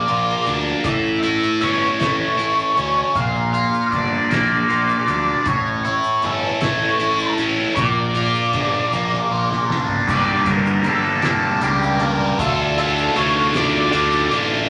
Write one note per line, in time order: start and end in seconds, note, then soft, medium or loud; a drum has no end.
0.00 0.47 A#2 medium
0.00 0.83 F3 medium
0.00 0.83 A#3 medium
0.00 0.86 A#3 medium
0.00 0.45 D4 medium
0.00 0.83 D4 medium
0.00 0.83 A#4 medium
0.00 0.53 D5 medium
0.08 0.33 A#1 medium
0.08 0.85 F4 medium
0.08 closed hi-hat medium
0.46 0.71 D2 medium
0.46 0.85 D4 medium
0.46 closed hi-hat medium
0.46 maracas soft
0.66 maracas soft
0.84 1.33 A1 medium
0.84 2.77 A2 medium
0.84 3.14 E3 medium
0.84 3.13 A3 medium
0.84 3.13 C#4 medium
0.84 3.13 A4 medium
0.84 1.21 E5 loud
0.84 kick loud
0.84 closed hi-hat medium
0.84 maracas medium
1.06 maracas soft
1.23 2.36 E4 medium
1.23 1.63 E5 medium
1.23 closed hi-hat medium
1.43 maracas medium
1.61 1.86 G1 medium
1.61 2.75 C#4 medium
1.61 1.98 C#5 medium
1.61 closed hi-hat medium
1.99 2.25 A1 medium
1.99 3.16 A3 medium
1.99 3.19 C#5 medium
1.99 snare medium
1.99 closed hi-hat medium
1.99 maracas medium
2.38 2.63 A1 medium
2.38 3.15 E4 medium
2.38 closed hi-hat medium
2.59 maracas medium
2.76 3.01 D2 medium
2.76 3.15 C#4 medium
2.76 closed hi-hat medium
3.15 3.64 A#1 medium
3.15 5.08 A#2 medium
3.15 5.44 F3 medium
3.15 5.44 A#3 medium
3.15 5.44 D4 medium
3.15 5.44 A#4 medium
3.15 3.52 F5 medium
3.15 kick loud
3.15 closed hi-hat medium
3.15 maracas medium
3.36 maracas soft
3.53 4.68 F4 medium
3.53 3.93 F5 medium
3.53 closed hi-hat medium
3.74 maracas medium
3.91 4.17 G1 medium
3.91 5.06 D4 medium
3.91 4.29 D5 medium
3.91 kick medium
3.91 closed hi-hat medium
4.30 4.55 A#1 medium
4.30 5.46 A#3 medium
4.30 5.47 D5 medium
4.30 snare medium
4.30 closed hi-hat medium
4.30 maracas medium
4.69 4.94 A#1 medium
4.69 5.46 F4 medium
4.69 closed hi-hat medium
4.89 maracas medium
5.07 5.32 D2 medium
5.07 5.46 D4 medium
5.07 closed hi-hat medium
5.46 5.95 A1 medium
5.46 7.39 A2 medium
5.46 7.75 E3 medium
5.46 7.75 A3 medium
5.46 7.75 C#4 medium
5.46 7.75 A4 medium
5.46 5.83 C#5 medium
5.46 kick loud
5.46 closed hi-hat medium
5.46 maracas medium
5.66 maracas soft
5.85 6.99 E4 medium
5.85 6.25 C#5 medium
5.85 closed hi-hat medium
6.04 maracas medium
6.22 6.48 G1 medium
6.22 7.37 C#4 medium
6.22 6.60 A4 medium
6.22 closed hi-hat medium
6.61 6.86 A1 medium
6.61 7.78 A3 medium
6.61 7.35 C#5 medium
6.61 snare loud
6.61 closed hi-hat medium
6.61 maracas medium
6.99 7.24 A1 medium
6.99 7.77 E4 medium
6.99 closed hi-hat medium
7.19 maracas medium
7.38 7.63 A1 medium
7.38 7.77 C#4 medium
7.38 closed hi-hat medium
7.76 8.25 A#1 medium
7.76 9.70 A#2 medium
7.76 10.06 F3 medium
7.76 10.06 A#3 medium
7.76 10.06 D4 medium
7.76 10.06 A#4 medium
7.76 9.65 D5 loud
7.76 kick loud
7.76 closed hi-hat medium
7.76 maracas loud
8.15 9.31 F4 medium
8.15 closed hi-hat medium
8.35 maracas medium
8.53 8.78 G1 medium
8.53 9.68 D4 medium
8.53 kick medium
8.53 closed hi-hat medium
8.92 9.17 A#1 medium
8.92 10.07 A#3 medium
8.92 snare soft
8.92 maracas medium
9.13 snare soft
9.31 9.55 A#1 medium
9.31 10.08 F4 medium
9.52 snare medium
9.68 9.93 A1 medium
9.68 10.08 D4 medium
9.68 snare medium
9.88 floor tom medium
10.07 10.42 G1 medium
10.07 10.85 G2 medium
10.07 10.85 D3 medium
10.07 10.47 G3 medium
10.07 12.36 A#3 medium
10.07 10.47 A#3 loud
10.07 14.69 D4 medium
10.07 10.47 D4 medium
10.07 12.37 G4 medium
10.07 10.45 G4 loud
10.07 10.49 D5 medium
10.07 14.65 A5 medium
10.07 kick loud
10.07 crash loud
10.07 maracas medium
10.46 10.81 G1 medium
10.46 10.83 G3 medium
10.46 10.84 A#3 medium
10.46 10.85 D4 medium
10.46 10.85 G4 medium
10.46 10.87 A#4 medium
10.46 kick medium
10.46 closed hi-hat medium
10.66 maracas medium
10.84 11.53 G1 medium
10.84 11.24 G3 medium
10.84 11.23 A#3 medium
10.84 11.24 D4 medium
10.84 11.22 G4 medium
10.84 11.25 A4 medium
10.84 closed hi-hat medium
11.22 11.60 G3 soft
11.22 11.61 A#3 medium
11.22 11.63 D4 medium
11.22 11.62 G4 medium
11.22 11.63 A4 medium
11.22 snare loud
11.22 closed hi-hat medium
11.22 maracas medium
11.61 12.30 C#2 medium
11.61 12.01 G3 medium
11.61 12.00 A#3 medium
11.61 12.00 D4 medium
11.61 12.02 G4 medium
11.61 11.99 G4 medium
11.61 closed hi-hat medium
11.61 maracas soft
11.83 maracas medium
12.00 12.37 G3 medium
12.00 12.37 A#3 medium
12.00 12.39 D4 medium
12.00 12.37 G4 medium
12.00 12.39 A#4 medium
12.00 closed hi-hat medium
12.38 13.07 D2 medium
12.38 13.13 D3 medium
12.38 12.78 A3 medium
12.38 12.78 D4 loud
12.38 14.68 F4 medium
12.38 12.77 F4 loud
12.38 14.67 A4 medium
12.38 12.78 A4 medium
12.38 kick loud
12.38 closed hi-hat loud
12.38 maracas loud
12.77 13.14 A3 medium
12.77 13.16 D4 medium
12.77 13.17 F4 medium
12.77 13.18 A4 medium
12.77 closed hi-hat medium
12.98 maracas medium
13.15 13.50 D2 medium
13.15 13.91 D3 medium
13.15 13.55 A3 medium
13.15 13.55 D4 medium
13.15 13.52 F4 medium
13.15 13.52 C#5 medium
13.15 closed hi-hat medium
13.53 13.89 D2 medium
13.53 13.92 A3 medium
13.53 13.93 D4 medium
13.53 13.93 F4 medium
13.53 14.38 D5 medium
13.53 snare loud
13.53 closed hi-hat medium
13.53 maracas medium
13.92 14.27 D2 medium
13.92 14.67 D3 medium
13.92 14.31 A3 medium
13.92 14.31 D4 medium
13.92 14.29 F4 medium
13.92 closed hi-hat medium
13.92 maracas soft
14.12 maracas medium
14.30 14.66 A1 medium
14.30 14.68 A3 medium
14.30 14.69 D4 medium
14.30 14.67 F4 medium
14.30 closed hi-hat medium